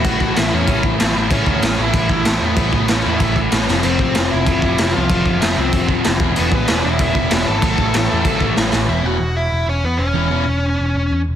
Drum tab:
CC |x-x-x-x-|x-x-x-x-|x-x-x-x-|x-x-x-x-|
SD |--o---o-|--o---o-|--o---oo|--o---o-|
BD |oo--oo--|oo--oo--|oo--oo--|-o--oo--|

CC |x-x-x-x-|x-x-x-x-|x-x-x---|--------|
SD |--o---o-|--o---o-|--o---oo|--------|
BD |oo--oo-o|-o--oo--|oo--oo--|--------|

CC |--------|
SD |--------|
BD |--------|